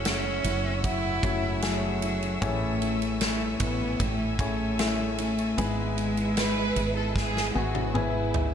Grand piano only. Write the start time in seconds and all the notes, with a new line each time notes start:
Already playing: C#3 A3 C#4 E4 F#4 C#5
1.23 A3 C#4 E4 F#4 C#5
1.62 A3 C#4 E4 F#4 G#4
2.41 A2 E3 A3 C#4 E4 G#4 C#5
4.39 A3 C#4 E4 G#4 C#5
4.79 A3 C#4 E4 G#4 E5
5.57 G#2 G#3 B3 E4 G#4
7.55 B3 E4 G#4
7.94 B3 E4 G#4